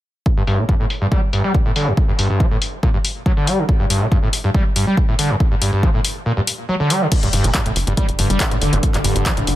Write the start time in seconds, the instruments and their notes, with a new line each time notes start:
0.26 kick
0.37 acid bass G2
0.47 acid bass G2, open hi-hat
0.59 acid bass A#2
0.69 acid bass G2, kick
0.80 acid bass A2
0.90 open hi-hat
1.01 acid bass G2
1.12 acid bass G3, kick
1.33 acid bass G2, open hi-hat
1.44 acid bass G3
1.55 kick
1.66 acid bass A2
1.76 acid bass D3, open hi-hat
1.87 acid bass F#2
1.97 kick
2.09 acid bass G2
2.19 acid bass G2, open hi-hat
2.30 acid bass G2
2.40 acid bass F#3, kick
2.51 acid bass A2
2.62 open hi-hat
2.83 acid bass A#2, kick
2.94 acid bass G2
3.05 open hi-hat
3.26 acid bass F#3, kick
3.37 acid bass D3
3.47 acid bass G3, open hi-hat
3.58 acid bass D3
3.69 kick
3.80 acid bass G2
3.90 acid bass G2, open hi-hat
4.01 acid bass A#2
4.11 acid bass G2, kick
4.23 acid bass A2
4.33 open hi-hat
4.44 acid bass G2
4.54 acid bass G3, kick
4.76 acid bass G2, open hi-hat
4.87 acid bass G3
4.97 kick
5.09 acid bass A2
5.19 acid bass D3, open hi-hat
5.30 acid bass F#2
5.40 kick
5.51 acid bass G2
5.62 acid bass G2, open hi-hat
5.73 acid bass G2
5.83 acid bass F#3, kick
5.94 acid bass A2
6.05 open hi-hat
6.26 acid bass A#2
6.37 acid bass G2
6.47 open hi-hat
6.69 acid bass F#3
6.80 acid bass D3
6.90 acid bass G3, open hi-hat
7.01 acid bass D3
7.12 synth drone G2 D3, kick, closed hi-hat, crash
7.23 analog synth bass G1, acid bass G2, closed hi-hat
7.33 analog synth bass G1, acid bass G2, open hi-hat
7.44 analog synth bass G1, acid bass A#2, closed hi-hat
7.54 acid bass G2, kick, clap, closed hi-hat
7.66 analog synth bass G1, acid bass A2, closed hi-hat
7.76 analog synth bass G1, open hi-hat
7.87 analog synth bass G1, acid bass G2, closed hi-hat
7.97 acid bass G3, kick, closed hi-hat
8.09 analog synth bass G1, closed hi-hat
8.19 analog synth bass G1, acid bass G2, open hi-hat
8.30 analog synth bass G1, acid bass G3, closed hi-hat
8.40 kick, clap, closed hi-hat
8.51 analog synth bass A1, acid bass A2, closed hi-hat
8.62 analog synth bass G1, acid bass D3, open hi-hat
8.73 analog synth bass G1, acid bass F#2, closed hi-hat
8.83 kick, closed hi-hat
8.94 analog synth bass G1, acid bass G2, clap, closed hi-hat
9.04 analog synth bass G1, acid bass G2, open hi-hat
9.16 analog synth bass G1, acid bass G2, closed hi-hat
9.26 acid bass F#3, kick, clap, closed hi-hat
9.37 analog synth bass G1, acid bass A2, closed hi-hat
9.47 analog synth bass G1, open hi-hat